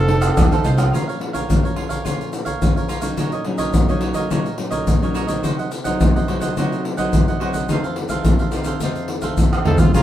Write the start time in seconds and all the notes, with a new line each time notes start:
Already playing: F1 F3 A4
0.08 C4 D#4 A4, muted cavaquinho stroke, pandeiro
0.21 A4 C5 F5, pandeiro, tamborim, shaker
0.37 D#2 C3, pandeiro, tamborim, shaker, surdo
0.51 C4 D#4 A4 C5 F5, pandeiro, shaker
0.64 C2 D#4 A4 C5 F5, pandeiro, shaker
0.77 F3 C#4 F4 A4 C5 F5, pandeiro, tamborim, shaker
0.93 A#2 F4 A#4 C#5 F5, pandeiro, shaker, surdo
1.07 A#4 C#5 F5, pandeiro, shaker
1.19 F3 C#4 F4, muted cavaquinho stroke, pandeiro
1.33 A#4 C#5 F5, pandeiro, shaker, surdo
1.49 F3 C#4 F4, pandeiro, shaker, surdo
1.63 A#4 C#5 F5, pandeiro, shaker
1.76 F4 A#4 C#5 F5, pandeiro
1.89 A#4 C#5 F5, pandeiro, shaker, surdo
2.05 A#2 F3 C#4 F4 A#4 C#5 F5, pandeiro, shaker, surdo
2.21 pandeiro, shaker
2.33 muted cavaquinho stroke, pandeiro, shaker
2.45 A#4 C#5 F5, pandeiro, shaker, surdo
2.62 F3 C#4 F4, pandeiro, shaker, surdo
2.76 A#4 C#5 F5, pandeiro, shaker
2.88 F4 A#4 C#5 F5, pandeiro, shaker
3.01 F#3 C#4 D#4 A#4 C#5 F5, pandeiro, shaker, surdo
3.17 A#2 F#4 A#4 C#5 D#5, pandeiro, shaker, surdo
3.32 A#4 C#5 D#5, pandeiro, shaker
3.44 F#3 C#4 D#4, muted cavaquinho stroke, pandeiro
3.58 A#4 C#5 D#5, pandeiro, shaker, surdo
3.74 A#2, pandeiro, shaker, surdo
3.88 F#3 C#4 D#4 A#4 C#5 D#5, pandeiro, shaker
4.01 F#4 A#4 C#5 D#5, pandeiro
4.14 A#4 C#5 D#5, pandeiro, shaker, surdo
4.30 A#2 F#3 C#4 D#4 F#4 A#4 C#5 D#5, pandeiro, shaker, surdo
4.46 pandeiro, shaker
4.58 F#3 C#4 D#4, muted cavaquinho stroke, pandeiro
4.71 A#4 C#5 D#5, pandeiro, shaker, surdo
4.87 A#2, pandeiro, shaker, surdo
5.02 F#3 C#4 D#4 A#4 C#5 D#5, pandeiro, shaker
5.15 F#4 A#4 C#5 D#5, pandeiro, shaker
5.27 F#3 C4 D#4 A#4 C#5 D#5, pandeiro, shaker, surdo
5.43 C3 F#4 C5 D#5 F#5, pandeiro, shaker, surdo
5.58 C5 D#5 F#5, pandeiro, shaker
5.71 muted cavaquinho stroke, pandeiro, shaker
5.84 F#3 C4 D#4 C5 D#5 F#5, pandeiro, shaker, surdo
6.01 C3, pandeiro, shaker, surdo
6.15 C5 D#5 F#5, pandeiro, shaker
6.28 F#3 C4 D#4 F#4 C5 D#5 F#5, pandeiro
6.40 C5 D#5 F#5, pandeiro, shaker, surdo
6.57 C3 F#3 C4 D#4 F#4 C5 D#5 F#5, pandeiro, shaker, surdo
6.72 pandeiro, shaker
6.84 muted cavaquinho stroke, pandeiro
6.97 F#3 C4 D#4 C5 D#5 F#5, pandeiro, shaker, surdo
7.13 C3, pandeiro, shaker, surdo
7.28 C5 D#5 F#5, pandeiro, shaker
7.40 F#3 C4 D#4 F#4 C5 D#5 F#5, pandeiro
7.53 C5 D#5 F#5, pandeiro, shaker, surdo
7.69 F2 D#3 A3 C4 D#4 A4 C5 F5, pandeiro, shaker, surdo
7.84 A4 C5 F5, pandeiro, shaker
7.96 muted cavaquinho stroke, pandeiro
8.09 D#3 A3 C4 A4 C5 F5, pandeiro, shaker, surdo
8.24 C3, pandeiro, shaker, surdo
8.39 A4 C5 F5, pandeiro, shaker
8.52 D#3 A3 C4 D#4 A4 C5 F5, pandeiro, shaker, surdo
8.64 A4 C5 F5, pandeiro, shaker, surdo
8.80 F2 D#3 A3 C4 D#4 A4 C5, pandeiro, shaker, surdo
8.84 F5
8.95 pandeiro, shaker
9.08 muted cavaquinho stroke, pandeiro
9.22 D#3 A3 C4 A4 C5 F5, pandeiro, shaker, surdo
9.37 C3, pandeiro, shaker, surdo
9.52 A4 C5 F5, pandeiro, tamborim, shaker
9.65 D#3 A3 C4 D#4 A4 C5 F5, surdo, pandeiro
9.78 F4 A4 C5 F5, pandeiro, shaker, surdo
9.94 A#1 A#2 G#3 C#4 F4 G#4 C#5 F5 A#5, pandeiro, shaker, surdo